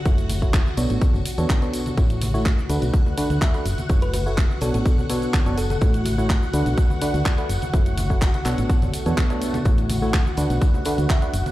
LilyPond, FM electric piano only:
\new Staff \with { instrumentName = "FM electric piano" } { \time 4/4 \key d \lydian \tempo 4 = 125 <a e' fis' cis''>8. <a e' fis' cis''>16 r8 <b, b d' a' cis''>4 r16 <b, b d' a' cis''>8 <b, b d' a' cis''>8. | <a, a e' fis' cis''>8. <a, a e' fis' cis''>16 r8 <d a d' fis' b'>4 <d a d' fis' b'>8. <a d' fis' b'>16 r8 | <a e' fis' cis''>8. <a e' fis' cis''>16 r8 <b, b d' a' cis''>4 <b, b d' a' cis''>8. <b, b d' a' cis''>16 r8 | <a, a e' fis' cis''>8. <a, a e' fis' cis''>16 r8 <d a d' fis' b'>4 <d a d' fis' b'>8. <a d' fis' b'>16 r8 |
<a e' fis' cis''>8. <a e' fis' cis''>16 r8 <b, b d' a' cis''>4 r16 <b, b d' a' cis''>8 <b, b d' a' cis''>8. | <a, a e' fis' cis''>8. <a, a e' fis' cis''>16 r8 <d a d' fis' b'>4 <d a d' fis' b'>8. <a d' fis' b'>16 r8 | }